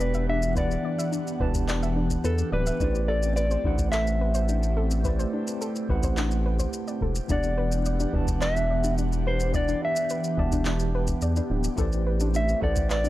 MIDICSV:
0, 0, Header, 1, 7, 480
1, 0, Start_track
1, 0, Key_signature, 1, "minor"
1, 0, Tempo, 560748
1, 484, Time_signature, 4, 2, 24, 8
1, 11206, End_track
2, 0, Start_track
2, 0, Title_t, "Clean electric guitar"
2, 0, Program_c, 0, 27
2, 0, Note_on_c, 0, 71, 103
2, 249, Note_off_c, 0, 71, 0
2, 253, Note_on_c, 0, 76, 99
2, 491, Note_off_c, 0, 76, 0
2, 495, Note_on_c, 0, 74, 95
2, 1415, Note_off_c, 0, 74, 0
2, 1928, Note_on_c, 0, 69, 94
2, 2149, Note_off_c, 0, 69, 0
2, 2169, Note_on_c, 0, 71, 96
2, 2639, Note_on_c, 0, 74, 94
2, 2660, Note_off_c, 0, 71, 0
2, 2868, Note_off_c, 0, 74, 0
2, 2878, Note_on_c, 0, 74, 102
2, 3349, Note_off_c, 0, 74, 0
2, 3353, Note_on_c, 0, 76, 101
2, 5724, Note_off_c, 0, 76, 0
2, 6262, Note_on_c, 0, 74, 96
2, 7201, Note_off_c, 0, 74, 0
2, 7205, Note_on_c, 0, 76, 103
2, 7651, Note_off_c, 0, 76, 0
2, 7939, Note_on_c, 0, 72, 92
2, 8155, Note_off_c, 0, 72, 0
2, 8180, Note_on_c, 0, 74, 114
2, 8419, Note_off_c, 0, 74, 0
2, 8429, Note_on_c, 0, 76, 97
2, 9822, Note_off_c, 0, 76, 0
2, 10582, Note_on_c, 0, 76, 103
2, 10797, Note_off_c, 0, 76, 0
2, 10816, Note_on_c, 0, 74, 97
2, 11033, Note_off_c, 0, 74, 0
2, 11053, Note_on_c, 0, 74, 110
2, 11206, Note_off_c, 0, 74, 0
2, 11206, End_track
3, 0, Start_track
3, 0, Title_t, "Synth arpeggio sound"
3, 0, Program_c, 1, 84
3, 5, Note_on_c, 1, 74, 82
3, 113, Note_off_c, 1, 74, 0
3, 125, Note_on_c, 1, 76, 94
3, 238, Note_off_c, 1, 76, 0
3, 247, Note_on_c, 1, 62, 76
3, 354, Note_off_c, 1, 62, 0
3, 484, Note_on_c, 1, 71, 101
3, 593, Note_off_c, 1, 71, 0
3, 725, Note_on_c, 1, 74, 78
3, 833, Note_off_c, 1, 74, 0
3, 843, Note_on_c, 1, 76, 99
3, 957, Note_off_c, 1, 76, 0
3, 959, Note_on_c, 1, 62, 88
3, 1070, Note_off_c, 1, 62, 0
3, 1203, Note_on_c, 1, 71, 97
3, 1312, Note_off_c, 1, 71, 0
3, 1441, Note_on_c, 1, 74, 84
3, 1551, Note_off_c, 1, 74, 0
3, 1564, Note_on_c, 1, 76, 97
3, 1678, Note_off_c, 1, 76, 0
3, 1680, Note_on_c, 1, 62, 71
3, 1790, Note_off_c, 1, 62, 0
3, 1920, Note_on_c, 1, 71, 96
3, 2031, Note_off_c, 1, 71, 0
3, 2160, Note_on_c, 1, 74, 75
3, 2270, Note_off_c, 1, 74, 0
3, 2283, Note_on_c, 1, 76, 101
3, 2397, Note_off_c, 1, 76, 0
3, 2403, Note_on_c, 1, 62, 88
3, 2512, Note_off_c, 1, 62, 0
3, 2640, Note_on_c, 1, 69, 105
3, 2750, Note_off_c, 1, 69, 0
3, 2882, Note_on_c, 1, 71, 81
3, 2992, Note_off_c, 1, 71, 0
3, 3004, Note_on_c, 1, 72, 96
3, 3117, Note_off_c, 1, 72, 0
3, 3127, Note_on_c, 1, 62, 72
3, 3234, Note_off_c, 1, 62, 0
3, 3369, Note_on_c, 1, 69, 98
3, 3475, Note_off_c, 1, 69, 0
3, 3605, Note_on_c, 1, 71, 69
3, 3713, Note_off_c, 1, 71, 0
3, 3720, Note_on_c, 1, 72, 101
3, 3835, Note_off_c, 1, 72, 0
3, 3841, Note_on_c, 1, 62, 74
3, 3951, Note_off_c, 1, 62, 0
3, 4081, Note_on_c, 1, 69, 101
3, 4191, Note_off_c, 1, 69, 0
3, 4321, Note_on_c, 1, 71, 90
3, 4431, Note_off_c, 1, 71, 0
3, 4443, Note_on_c, 1, 72, 106
3, 4557, Note_off_c, 1, 72, 0
3, 4563, Note_on_c, 1, 62, 82
3, 4672, Note_off_c, 1, 62, 0
3, 4805, Note_on_c, 1, 69, 95
3, 4913, Note_off_c, 1, 69, 0
3, 5046, Note_on_c, 1, 71, 73
3, 5154, Note_off_c, 1, 71, 0
3, 5170, Note_on_c, 1, 72, 107
3, 5280, Note_off_c, 1, 72, 0
3, 5287, Note_on_c, 1, 62, 85
3, 5394, Note_off_c, 1, 62, 0
3, 5527, Note_on_c, 1, 71, 71
3, 5634, Note_off_c, 1, 71, 0
3, 5643, Note_on_c, 1, 72, 77
3, 5757, Note_off_c, 1, 72, 0
3, 5886, Note_on_c, 1, 74, 74
3, 5992, Note_off_c, 1, 74, 0
3, 6010, Note_on_c, 1, 69, 71
3, 6116, Note_off_c, 1, 69, 0
3, 6250, Note_on_c, 1, 62, 88
3, 6356, Note_off_c, 1, 62, 0
3, 6486, Note_on_c, 1, 71, 104
3, 6593, Note_off_c, 1, 71, 0
3, 6729, Note_on_c, 1, 74, 81
3, 6835, Note_off_c, 1, 74, 0
3, 6848, Note_on_c, 1, 62, 94
3, 6911, Note_off_c, 1, 62, 0
3, 6967, Note_on_c, 1, 62, 76
3, 7074, Note_off_c, 1, 62, 0
3, 7203, Note_on_c, 1, 71, 110
3, 7312, Note_off_c, 1, 71, 0
3, 7450, Note_on_c, 1, 74, 77
3, 7556, Note_off_c, 1, 74, 0
3, 7570, Note_on_c, 1, 62, 97
3, 7631, Note_off_c, 1, 62, 0
3, 7692, Note_on_c, 1, 62, 80
3, 7796, Note_off_c, 1, 62, 0
3, 7933, Note_on_c, 1, 71, 104
3, 8037, Note_off_c, 1, 71, 0
3, 8167, Note_on_c, 1, 74, 88
3, 8274, Note_off_c, 1, 74, 0
3, 8292, Note_on_c, 1, 62, 101
3, 8353, Note_off_c, 1, 62, 0
3, 8410, Note_on_c, 1, 62, 80
3, 8515, Note_off_c, 1, 62, 0
3, 8651, Note_on_c, 1, 71, 94
3, 8756, Note_off_c, 1, 71, 0
3, 8893, Note_on_c, 1, 74, 78
3, 8997, Note_off_c, 1, 74, 0
3, 9012, Note_on_c, 1, 62, 101
3, 9073, Note_off_c, 1, 62, 0
3, 9133, Note_on_c, 1, 62, 88
3, 9237, Note_off_c, 1, 62, 0
3, 9372, Note_on_c, 1, 71, 103
3, 9476, Note_off_c, 1, 71, 0
3, 9607, Note_on_c, 1, 74, 79
3, 9714, Note_off_c, 1, 74, 0
3, 9731, Note_on_c, 1, 62, 100
3, 9792, Note_off_c, 1, 62, 0
3, 9852, Note_on_c, 1, 62, 78
3, 9956, Note_off_c, 1, 62, 0
3, 10086, Note_on_c, 1, 69, 103
3, 10194, Note_off_c, 1, 69, 0
3, 10328, Note_on_c, 1, 71, 77
3, 10434, Note_off_c, 1, 71, 0
3, 10451, Note_on_c, 1, 62, 94
3, 10512, Note_off_c, 1, 62, 0
3, 10572, Note_on_c, 1, 62, 86
3, 10676, Note_off_c, 1, 62, 0
3, 10808, Note_on_c, 1, 69, 102
3, 10915, Note_off_c, 1, 69, 0
3, 11048, Note_on_c, 1, 71, 81
3, 11155, Note_off_c, 1, 71, 0
3, 11164, Note_on_c, 1, 62, 99
3, 11206, Note_off_c, 1, 62, 0
3, 11206, End_track
4, 0, Start_track
4, 0, Title_t, "Tine electric piano"
4, 0, Program_c, 2, 4
4, 0, Control_c, 2, 64, 127
4, 0, Note_on_c, 2, 52, 89
4, 0, Note_on_c, 2, 59, 83
4, 0, Note_on_c, 2, 62, 84
4, 0, Note_on_c, 2, 67, 82
4, 0, Note_on_c, 2, 78, 98
4, 0, Note_on_c, 2, 81, 101
4, 470, Note_off_c, 2, 52, 0
4, 470, Note_on_c, 2, 52, 89
4, 478, Note_off_c, 2, 59, 0
4, 478, Note_on_c, 2, 59, 78
4, 490, Note_off_c, 2, 62, 0
4, 490, Note_on_c, 2, 62, 80
4, 500, Note_off_c, 2, 67, 0
4, 500, Note_on_c, 2, 67, 76
4, 509, Note_off_c, 2, 78, 0
4, 509, Note_on_c, 2, 78, 99
4, 1168, Note_off_c, 2, 52, 0
4, 1172, Note_off_c, 2, 59, 0
4, 1178, Note_off_c, 2, 62, 0
4, 1183, Note_off_c, 2, 67, 0
4, 1188, Note_off_c, 2, 78, 0
4, 1192, Note_on_c, 2, 52, 96
4, 1198, Note_on_c, 2, 59, 76
4, 1204, Note_on_c, 2, 62, 78
4, 1207, Note_on_c, 2, 67, 81
4, 1218, Note_off_c, 2, 81, 0
4, 1218, Note_on_c, 2, 81, 102
4, 1292, Note_off_c, 2, 52, 0
4, 1295, Note_off_c, 2, 59, 0
4, 1298, Note_off_c, 2, 62, 0
4, 1300, Note_off_c, 2, 67, 0
4, 1305, Note_off_c, 2, 81, 0
4, 2391, Note_on_c, 2, 57, 85
4, 2401, Note_on_c, 2, 64, 84
4, 2408, Note_on_c, 2, 67, 78
4, 2416, Control_c, 2, 64, 0
4, 2418, Note_on_c, 2, 71, 81
4, 2425, Note_on_c, 2, 72, 83
4, 2433, Note_on_c, 2, 74, 97
4, 2578, Control_c, 2, 64, 127
4, 3088, Note_off_c, 2, 57, 0
4, 3094, Note_off_c, 2, 64, 0
4, 3097, Note_off_c, 2, 67, 0
4, 3102, Note_off_c, 2, 71, 0
4, 3106, Note_off_c, 2, 72, 0
4, 3110, Note_off_c, 2, 74, 0
4, 3121, Note_on_c, 2, 57, 91
4, 3125, Note_on_c, 2, 64, 80
4, 3130, Note_on_c, 2, 67, 84
4, 3133, Note_on_c, 2, 71, 81
4, 3136, Note_on_c, 2, 72, 85
4, 3142, Note_on_c, 2, 78, 100
4, 3217, Note_off_c, 2, 57, 0
4, 3219, Note_off_c, 2, 64, 0
4, 3221, Note_off_c, 2, 67, 0
4, 3223, Note_off_c, 2, 71, 0
4, 3224, Note_off_c, 2, 72, 0
4, 3228, Note_off_c, 2, 78, 0
4, 4311, Note_on_c, 2, 57, 86
4, 4317, Note_on_c, 2, 64, 74
4, 4329, Note_on_c, 2, 67, 81
4, 4334, Note_on_c, 2, 71, 79
4, 4341, Note_on_c, 2, 72, 79
4, 4352, Note_on_c, 2, 74, 92
4, 5009, Note_off_c, 2, 57, 0
4, 5012, Note_off_c, 2, 64, 0
4, 5018, Note_off_c, 2, 67, 0
4, 5020, Note_off_c, 2, 71, 0
4, 5024, Note_off_c, 2, 72, 0
4, 5029, Note_off_c, 2, 74, 0
4, 5040, Note_on_c, 2, 57, 89
4, 5047, Note_on_c, 2, 64, 86
4, 5049, Note_on_c, 2, 67, 80
4, 5052, Note_on_c, 2, 71, 78
4, 5055, Note_on_c, 2, 72, 79
4, 5061, Note_on_c, 2, 78, 96
4, 5137, Note_off_c, 2, 57, 0
4, 5140, Note_off_c, 2, 64, 0
4, 5141, Note_off_c, 2, 67, 0
4, 5142, Note_off_c, 2, 71, 0
4, 5144, Note_off_c, 2, 72, 0
4, 5147, Note_off_c, 2, 78, 0
4, 6231, Note_on_c, 2, 52, 83
4, 6239, Note_on_c, 2, 59, 80
4, 6252, Note_on_c, 2, 62, 79
4, 6254, Control_c, 2, 64, 0
4, 6261, Note_on_c, 2, 67, 80
4, 6274, Note_on_c, 2, 78, 96
4, 6414, Control_c, 2, 64, 127
4, 6929, Note_off_c, 2, 52, 0
4, 6932, Note_off_c, 2, 59, 0
4, 6939, Note_off_c, 2, 62, 0
4, 6943, Note_off_c, 2, 67, 0
4, 6950, Note_off_c, 2, 78, 0
4, 6962, Note_on_c, 2, 52, 93
4, 6966, Note_on_c, 2, 59, 87
4, 6971, Note_on_c, 2, 62, 84
4, 6979, Note_on_c, 2, 67, 79
4, 6984, Note_on_c, 2, 81, 96
4, 7057, Note_off_c, 2, 52, 0
4, 7059, Note_off_c, 2, 59, 0
4, 7062, Note_off_c, 2, 62, 0
4, 7066, Note_off_c, 2, 67, 0
4, 7069, Note_off_c, 2, 81, 0
4, 8154, Note_on_c, 2, 52, 85
4, 8165, Note_on_c, 2, 59, 83
4, 8176, Note_on_c, 2, 62, 81
4, 8189, Note_on_c, 2, 67, 76
4, 8197, Note_on_c, 2, 78, 89
4, 8850, Note_off_c, 2, 52, 0
4, 8855, Note_off_c, 2, 59, 0
4, 8861, Note_off_c, 2, 62, 0
4, 8868, Note_off_c, 2, 67, 0
4, 8872, Note_off_c, 2, 78, 0
4, 8875, Note_on_c, 2, 52, 89
4, 8883, Note_on_c, 2, 59, 85
4, 8887, Note_on_c, 2, 62, 82
4, 8895, Note_on_c, 2, 67, 84
4, 8895, Note_on_c, 2, 81, 100
4, 8974, Note_off_c, 2, 52, 0
4, 8978, Note_off_c, 2, 59, 0
4, 8980, Note_off_c, 2, 62, 0
4, 8984, Note_off_c, 2, 67, 0
4, 8984, Note_off_c, 2, 81, 0
4, 10065, Note_on_c, 2, 57, 91
4, 10073, Note_on_c, 2, 64, 83
4, 10080, Note_on_c, 2, 67, 83
4, 10087, Note_on_c, 2, 71, 85
4, 10094, Control_c, 2, 64, 0
4, 10099, Note_on_c, 2, 72, 76
4, 10110, Note_on_c, 2, 74, 96
4, 10232, Control_c, 2, 64, 127
4, 10766, Note_off_c, 2, 57, 0
4, 10769, Note_off_c, 2, 64, 0
4, 10773, Note_off_c, 2, 67, 0
4, 10777, Note_off_c, 2, 71, 0
4, 10782, Note_off_c, 2, 72, 0
4, 10788, Note_off_c, 2, 74, 0
4, 10790, Note_on_c, 2, 57, 94
4, 10796, Note_on_c, 2, 64, 83
4, 10799, Note_on_c, 2, 67, 79
4, 10802, Note_on_c, 2, 71, 83
4, 10811, Note_on_c, 2, 72, 84
4, 10811, Note_on_c, 2, 78, 103
4, 10891, Note_off_c, 2, 57, 0
4, 10895, Note_off_c, 2, 64, 0
4, 10896, Note_off_c, 2, 67, 0
4, 10898, Note_off_c, 2, 71, 0
4, 10902, Note_off_c, 2, 72, 0
4, 10902, Note_off_c, 2, 78, 0
4, 11206, End_track
5, 0, Start_track
5, 0, Title_t, "Analog synth pad"
5, 0, Program_c, 3, 89
5, 0, Note_on_c, 3, 52, 84
5, 0, Note_on_c, 3, 59, 75
5, 0, Note_on_c, 3, 62, 71
5, 0, Note_on_c, 3, 67, 88
5, 0, Note_on_c, 3, 78, 71
5, 2369, Note_off_c, 3, 59, 0
5, 2369, Note_off_c, 3, 67, 0
5, 2371, Note_off_c, 3, 78, 0
5, 2372, Note_off_c, 3, 52, 0
5, 2374, Note_off_c, 3, 62, 0
5, 2394, Note_on_c, 3, 67, 91
5, 2396, Note_on_c, 3, 57, 81
5, 2399, Note_on_c, 3, 60, 76
5, 6205, Note_off_c, 3, 57, 0
5, 6207, Note_off_c, 3, 60, 0
5, 6254, Note_on_c, 3, 52, 85
5, 6255, Note_on_c, 3, 59, 78
5, 6256, Note_on_c, 3, 78, 75
5, 6259, Note_on_c, 3, 62, 78
5, 10055, Note_off_c, 3, 52, 0
5, 10055, Note_off_c, 3, 59, 0
5, 10056, Note_off_c, 3, 78, 0
5, 10057, Note_off_c, 3, 62, 0
5, 10088, Note_on_c, 3, 57, 85
5, 10088, Note_on_c, 3, 60, 82
5, 11206, Note_off_c, 3, 57, 0
5, 11206, Note_off_c, 3, 60, 0
5, 11206, Note_off_c, 3, 67, 0
5, 11206, End_track
6, 0, Start_track
6, 0, Title_t, "Analog synth bass"
6, 0, Program_c, 4, 38
6, 0, Note_on_c, 4, 28, 100
6, 660, Note_off_c, 4, 28, 0
6, 1201, Note_on_c, 4, 28, 97
6, 1859, Note_off_c, 4, 28, 0
6, 1922, Note_on_c, 4, 40, 74
6, 2084, Note_off_c, 4, 40, 0
6, 2160, Note_on_c, 4, 26, 100
6, 2323, Note_off_c, 4, 26, 0
6, 2400, Note_on_c, 4, 33, 97
6, 3059, Note_off_c, 4, 33, 0
6, 3119, Note_on_c, 4, 33, 97
6, 4498, Note_off_c, 4, 33, 0
6, 5045, Note_on_c, 4, 33, 108
6, 5701, Note_off_c, 4, 33, 0
6, 6004, Note_on_c, 4, 28, 91
6, 6165, Note_off_c, 4, 28, 0
6, 6246, Note_on_c, 4, 28, 99
6, 6901, Note_off_c, 4, 28, 0
6, 6963, Note_on_c, 4, 28, 108
6, 8340, Note_off_c, 4, 28, 0
6, 8884, Note_on_c, 4, 28, 103
6, 9541, Note_off_c, 4, 28, 0
6, 9606, Note_on_c, 4, 40, 83
6, 9766, Note_off_c, 4, 40, 0
6, 9845, Note_on_c, 4, 26, 104
6, 10006, Note_off_c, 4, 26, 0
6, 10084, Note_on_c, 4, 33, 105
6, 10741, Note_off_c, 4, 33, 0
6, 10806, Note_on_c, 4, 33, 103
6, 11206, Note_off_c, 4, 33, 0
6, 11206, End_track
7, 0, Start_track
7, 0, Title_t, "Drums"
7, 3, Note_on_c, 9, 82, 54
7, 88, Note_off_c, 9, 82, 0
7, 121, Note_on_c, 9, 82, 32
7, 206, Note_off_c, 9, 82, 0
7, 365, Note_on_c, 9, 82, 66
7, 450, Note_off_c, 9, 82, 0
7, 484, Note_on_c, 9, 36, 107
7, 484, Note_on_c, 9, 82, 49
7, 569, Note_off_c, 9, 36, 0
7, 570, Note_off_c, 9, 82, 0
7, 609, Note_on_c, 9, 82, 33
7, 694, Note_off_c, 9, 82, 0
7, 851, Note_on_c, 9, 82, 61
7, 937, Note_off_c, 9, 82, 0
7, 966, Note_on_c, 9, 82, 54
7, 1052, Note_off_c, 9, 82, 0
7, 1090, Note_on_c, 9, 82, 35
7, 1176, Note_off_c, 9, 82, 0
7, 1202, Note_on_c, 9, 36, 95
7, 1288, Note_off_c, 9, 36, 0
7, 1323, Note_on_c, 9, 82, 65
7, 1324, Note_on_c, 9, 36, 103
7, 1409, Note_off_c, 9, 82, 0
7, 1410, Note_off_c, 9, 36, 0
7, 1443, Note_on_c, 9, 39, 76
7, 1444, Note_on_c, 9, 82, 55
7, 1528, Note_off_c, 9, 39, 0
7, 1530, Note_off_c, 9, 82, 0
7, 1565, Note_on_c, 9, 82, 32
7, 1650, Note_off_c, 9, 82, 0
7, 1802, Note_on_c, 9, 82, 63
7, 1803, Note_on_c, 9, 36, 57
7, 1887, Note_off_c, 9, 82, 0
7, 1889, Note_off_c, 9, 36, 0
7, 1922, Note_on_c, 9, 82, 52
7, 2008, Note_off_c, 9, 82, 0
7, 2040, Note_on_c, 9, 82, 31
7, 2126, Note_off_c, 9, 82, 0
7, 2282, Note_on_c, 9, 82, 63
7, 2368, Note_off_c, 9, 82, 0
7, 2400, Note_on_c, 9, 36, 114
7, 2402, Note_on_c, 9, 82, 50
7, 2486, Note_off_c, 9, 36, 0
7, 2488, Note_off_c, 9, 82, 0
7, 2525, Note_on_c, 9, 82, 33
7, 2611, Note_off_c, 9, 82, 0
7, 2764, Note_on_c, 9, 82, 66
7, 2849, Note_off_c, 9, 82, 0
7, 2884, Note_on_c, 9, 82, 53
7, 2970, Note_off_c, 9, 82, 0
7, 3004, Note_on_c, 9, 82, 35
7, 3090, Note_off_c, 9, 82, 0
7, 3121, Note_on_c, 9, 36, 99
7, 3207, Note_off_c, 9, 36, 0
7, 3241, Note_on_c, 9, 36, 104
7, 3241, Note_on_c, 9, 82, 67
7, 3326, Note_off_c, 9, 36, 0
7, 3327, Note_off_c, 9, 82, 0
7, 3360, Note_on_c, 9, 39, 78
7, 3362, Note_on_c, 9, 82, 53
7, 3446, Note_off_c, 9, 39, 0
7, 3448, Note_off_c, 9, 82, 0
7, 3485, Note_on_c, 9, 82, 30
7, 3570, Note_off_c, 9, 82, 0
7, 3721, Note_on_c, 9, 82, 61
7, 3807, Note_off_c, 9, 82, 0
7, 3841, Note_on_c, 9, 82, 55
7, 3927, Note_off_c, 9, 82, 0
7, 3964, Note_on_c, 9, 82, 29
7, 4050, Note_off_c, 9, 82, 0
7, 4202, Note_on_c, 9, 82, 63
7, 4288, Note_off_c, 9, 82, 0
7, 4321, Note_on_c, 9, 36, 108
7, 4321, Note_on_c, 9, 82, 51
7, 4407, Note_off_c, 9, 36, 0
7, 4407, Note_off_c, 9, 82, 0
7, 4448, Note_on_c, 9, 82, 33
7, 4533, Note_off_c, 9, 82, 0
7, 4687, Note_on_c, 9, 82, 64
7, 4773, Note_off_c, 9, 82, 0
7, 4808, Note_on_c, 9, 82, 52
7, 4894, Note_off_c, 9, 82, 0
7, 4929, Note_on_c, 9, 82, 35
7, 5015, Note_off_c, 9, 82, 0
7, 5043, Note_on_c, 9, 36, 94
7, 5128, Note_off_c, 9, 36, 0
7, 5163, Note_on_c, 9, 36, 104
7, 5163, Note_on_c, 9, 82, 67
7, 5248, Note_off_c, 9, 82, 0
7, 5249, Note_off_c, 9, 36, 0
7, 5283, Note_on_c, 9, 39, 78
7, 5285, Note_on_c, 9, 82, 55
7, 5369, Note_off_c, 9, 39, 0
7, 5370, Note_off_c, 9, 82, 0
7, 5403, Note_on_c, 9, 82, 33
7, 5488, Note_off_c, 9, 82, 0
7, 5644, Note_on_c, 9, 36, 60
7, 5646, Note_on_c, 9, 82, 67
7, 5730, Note_off_c, 9, 36, 0
7, 5731, Note_off_c, 9, 82, 0
7, 5764, Note_on_c, 9, 82, 52
7, 5849, Note_off_c, 9, 82, 0
7, 5887, Note_on_c, 9, 82, 32
7, 5972, Note_off_c, 9, 82, 0
7, 6003, Note_on_c, 9, 36, 56
7, 6089, Note_off_c, 9, 36, 0
7, 6124, Note_on_c, 9, 82, 62
7, 6210, Note_off_c, 9, 82, 0
7, 6243, Note_on_c, 9, 82, 54
7, 6245, Note_on_c, 9, 36, 120
7, 6328, Note_off_c, 9, 82, 0
7, 6330, Note_off_c, 9, 36, 0
7, 6362, Note_on_c, 9, 82, 33
7, 6448, Note_off_c, 9, 82, 0
7, 6607, Note_on_c, 9, 82, 67
7, 6693, Note_off_c, 9, 82, 0
7, 6725, Note_on_c, 9, 82, 57
7, 6810, Note_off_c, 9, 82, 0
7, 6848, Note_on_c, 9, 82, 38
7, 6933, Note_off_c, 9, 82, 0
7, 6966, Note_on_c, 9, 36, 96
7, 7051, Note_off_c, 9, 36, 0
7, 7086, Note_on_c, 9, 36, 114
7, 7088, Note_on_c, 9, 82, 72
7, 7172, Note_off_c, 9, 36, 0
7, 7173, Note_off_c, 9, 82, 0
7, 7203, Note_on_c, 9, 39, 86
7, 7205, Note_on_c, 9, 82, 56
7, 7289, Note_off_c, 9, 39, 0
7, 7290, Note_off_c, 9, 82, 0
7, 7332, Note_on_c, 9, 82, 33
7, 7417, Note_off_c, 9, 82, 0
7, 7567, Note_on_c, 9, 82, 63
7, 7652, Note_off_c, 9, 82, 0
7, 7688, Note_on_c, 9, 82, 54
7, 7774, Note_off_c, 9, 82, 0
7, 7811, Note_on_c, 9, 82, 34
7, 7896, Note_off_c, 9, 82, 0
7, 8047, Note_on_c, 9, 82, 65
7, 8133, Note_off_c, 9, 82, 0
7, 8167, Note_on_c, 9, 36, 116
7, 8168, Note_on_c, 9, 82, 56
7, 8252, Note_off_c, 9, 36, 0
7, 8253, Note_off_c, 9, 82, 0
7, 8289, Note_on_c, 9, 82, 36
7, 8375, Note_off_c, 9, 82, 0
7, 8527, Note_on_c, 9, 82, 70
7, 8613, Note_off_c, 9, 82, 0
7, 8643, Note_on_c, 9, 82, 57
7, 8729, Note_off_c, 9, 82, 0
7, 8766, Note_on_c, 9, 82, 37
7, 8851, Note_off_c, 9, 82, 0
7, 8886, Note_on_c, 9, 36, 108
7, 8972, Note_off_c, 9, 36, 0
7, 9007, Note_on_c, 9, 36, 106
7, 9007, Note_on_c, 9, 82, 70
7, 9093, Note_off_c, 9, 36, 0
7, 9093, Note_off_c, 9, 82, 0
7, 9119, Note_on_c, 9, 39, 81
7, 9120, Note_on_c, 9, 82, 58
7, 9204, Note_off_c, 9, 39, 0
7, 9206, Note_off_c, 9, 82, 0
7, 9241, Note_on_c, 9, 82, 36
7, 9326, Note_off_c, 9, 82, 0
7, 9480, Note_on_c, 9, 82, 66
7, 9486, Note_on_c, 9, 36, 64
7, 9566, Note_off_c, 9, 82, 0
7, 9571, Note_off_c, 9, 36, 0
7, 9601, Note_on_c, 9, 82, 54
7, 9687, Note_off_c, 9, 82, 0
7, 9727, Note_on_c, 9, 82, 35
7, 9812, Note_off_c, 9, 82, 0
7, 9964, Note_on_c, 9, 82, 68
7, 10049, Note_off_c, 9, 82, 0
7, 10082, Note_on_c, 9, 82, 54
7, 10085, Note_on_c, 9, 36, 127
7, 10168, Note_off_c, 9, 82, 0
7, 10171, Note_off_c, 9, 36, 0
7, 10207, Note_on_c, 9, 82, 36
7, 10293, Note_off_c, 9, 82, 0
7, 10445, Note_on_c, 9, 82, 70
7, 10531, Note_off_c, 9, 82, 0
7, 10566, Note_on_c, 9, 82, 58
7, 10652, Note_off_c, 9, 82, 0
7, 10688, Note_on_c, 9, 82, 37
7, 10774, Note_off_c, 9, 82, 0
7, 10806, Note_on_c, 9, 36, 105
7, 10892, Note_off_c, 9, 36, 0
7, 10922, Note_on_c, 9, 82, 73
7, 10928, Note_on_c, 9, 36, 123
7, 11007, Note_off_c, 9, 82, 0
7, 11013, Note_off_c, 9, 36, 0
7, 11045, Note_on_c, 9, 39, 81
7, 11047, Note_on_c, 9, 82, 60
7, 11130, Note_off_c, 9, 39, 0
7, 11132, Note_off_c, 9, 82, 0
7, 11166, Note_on_c, 9, 82, 35
7, 11206, Note_off_c, 9, 82, 0
7, 11206, End_track
0, 0, End_of_file